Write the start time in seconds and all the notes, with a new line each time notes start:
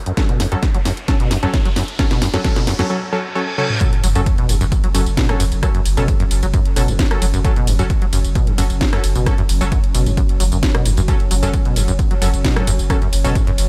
Already playing: riser
0.06 F#2, closed hi-hat
0.17 F#3 C#4 A4, kick, snare, closed hi-hat
0.29 B2, closed hi-hat
0.40 F#2, snare, open hi-hat
0.52 F#2 F#3 C#4 A4, closed hi-hat
0.63 kick, snare, closed hi-hat
0.74 F#3, closed hi-hat
0.85 F#2, snare, open hi-hat
0.97 closed hi-hat
1.08 F#3 C#4 A4, kick, snare, closed hi-hat
1.20 B2, closed hi-hat
1.31 F#2, snare, open hi-hat
1.43 F#2 F#3 C#4 A4, closed hi-hat
1.54 kick, snare, closed hi-hat
1.65 F#3, closed hi-hat
1.76 F#2, snare, open hi-hat
1.88 closed hi-hat
1.99 F#3 C#4 A4, kick, snare, closed hi-hat
2.11 B2, snare, closed hi-hat
2.22 F#2, snare, open hi-hat
2.34 F#2 F#3 C#4 A4, snare, closed hi-hat
2.44 F#3 C#4 A4, kick, snare, closed hi-hat
2.56 B2, snare, closed hi-hat
2.67 F#2, snare, open hi-hat
2.79 F#2 F#3 C#4 A4, snare, closed hi-hat
2.90 F#3 C#4 A4, reverse cymbal
3.13 F#3 C#4 A4
3.35 F#3 C#4 A4
3.58 F#3 C#4 A4, high tom
3.70 mid tom
3.81 F#2 F#3 C#4 A4, kick, closed hi-hat, ride, tambourine, sub drop
3.93 closed hi-hat
4.04 F#1 F#3, open hi-hat, ride, tambourine
4.15 F#1 F#2 F#3 C#4 A4, closed hi-hat, tambourine
4.26 kick, closed hi-hat, ride, tambourine
4.38 B2, closed hi-hat
4.49 F#1 G2, open hi-hat, ride, tambourine
4.61 F#1 F#2, closed hi-hat, tambourine
4.72 kick, closed hi-hat, ride, tambourine
4.84 F#3, closed hi-hat
4.94 F#1 F#2 F#3 C#4 A4, open hi-hat, ride, tambourine
5.06 F#1, closed hi-hat, tambourine
5.17 B2, kick, snare, closed hi-hat, ride, tambourine
5.29 G2 F#3 C#4 A4, cross-stick, closed hi-hat
5.40 F#1 F#2, open hi-hat, ride, tambourine
5.52 F#1, closed hi-hat, tambourine
5.63 F#3 C#4 A4, kick, cross-stick, closed hi-hat, ride, tambourine
5.75 F#2, closed hi-hat
5.85 F#1, open hi-hat, ride, tambourine
5.97 F#1 B2 F#3 C#4 A4, closed hi-hat, tambourine
6.08 G2, kick, closed hi-hat, ride, tambourine
6.20 F#2, closed hi-hat
6.31 F#1, open hi-hat, ride, tambourine
6.43 F#1 F#3, closed hi-hat, tambourine
6.54 F#2, kick, closed hi-hat, ride, tambourine
6.66 closed hi-hat
6.76 F#1 B2 F#3 C#4 A4, open hi-hat, ride, tambourine
6.88 F#1 G2, closed hi-hat, tambourine
6.99 F#2, kick, snare, closed hi-hat, ride, tambourine
7.11 F#3 C#4 A4, cross-stick, closed hi-hat
7.22 F#1 F#3, open hi-hat, ride, tambourine
7.34 F#1 F#2, closed hi-hat, tambourine
7.44 F#3 C#4 A4, kick, closed hi-hat, ride, tambourine
7.56 B2, closed hi-hat
7.67 F#1 G2, open hi-hat, ride, tambourine
7.79 F#1 F#2 F#3 C#4 A4, closed hi-hat, tambourine
7.90 kick, closed hi-hat, ride, tambourine
8.02 F#3, closed hi-hat
8.13 F#1 F#2, open hi-hat, ride, tambourine
8.25 F#1, closed hi-hat, tambourine
8.35 B2, kick, closed hi-hat, ride, tambourine
8.47 G2, closed hi-hat
8.58 F#1 F#2 F#3 C#4 A4, open hi-hat, ride, tambourine
8.70 F#1, closed hi-hat, tambourine
8.81 F#3, kick, snare, closed hi-hat, ride, tambourine
8.93 F#2 F#3 C#4 A4, cross-stick, closed hi-hat
9.04 F#1, open hi-hat, ride, tambourine
9.15 F#1 B2, closed hi-hat, tambourine
9.26 G2 F#3 C#4 A4, kick, cross-stick, closed hi-hat, ride, tambourine
9.38 F#2, closed hi-hat
9.49 F#1, open hi-hat, ride, tambourine
9.61 F#1 F#3 C#4 A4, closed hi-hat, tambourine
9.72 F#2, kick, closed hi-hat, ride, tambourine
9.84 closed hi-hat
9.95 F#1 B2, open hi-hat, ride, tambourine
10.06 F#1 G2, closed hi-hat, tambourine
10.17 F#2, kick, closed hi-hat, ride, tambourine
10.29 closed hi-hat
10.40 F#1 F#3, open hi-hat, ride, tambourine
10.52 F#1 F#2, closed hi-hat, tambourine
10.63 kick, snare, closed hi-hat, ride, tambourine
10.75 B2, cross-stick, closed hi-hat
10.85 F#1 G2, open hi-hat, ride, tambourine
10.97 F#1 F#2, closed hi-hat, tambourine
11.08 F#2 F#3 C#4 A4, kick, closed hi-hat, ride, tambourine
11.20 closed hi-hat
11.31 F#1 F#3, open hi-hat, ride, tambourine
11.43 F#1 F#2 F#3 C#4 A4, closed hi-hat, tambourine
11.54 kick, closed hi-hat, ride, tambourine
11.65 B2, closed hi-hat
11.76 F#1 G2, open hi-hat, ride, tambourine
11.88 F#1 F#2, closed hi-hat, tambourine
11.99 kick, closed hi-hat, ride, tambourine
12.11 F#3, closed hi-hat
12.22 F#1 F#2 F#3 C#4 A4, open hi-hat, ride, tambourine
12.34 F#1, closed hi-hat, tambourine
12.44 B2, kick, snare, closed hi-hat, ride, tambourine
12.56 G2 F#3 C#4 A4, cross-stick, closed hi-hat
12.67 F#1 F#2, open hi-hat, ride, tambourine
12.79 F#1, closed hi-hat, tambourine
12.90 F#3 C#4 A4, kick, cross-stick, closed hi-hat, ride, tambourine
13.02 F#2, closed hi-hat
13.13 F#1, open hi-hat, ride, tambourine
13.24 F#1 B2 F#3 C#4 A4, closed hi-hat, tambourine
13.35 G2, kick, closed hi-hat, ride, tambourine
13.47 F#2, closed hi-hat
13.58 F#1, open hi-hat, ride, tambourine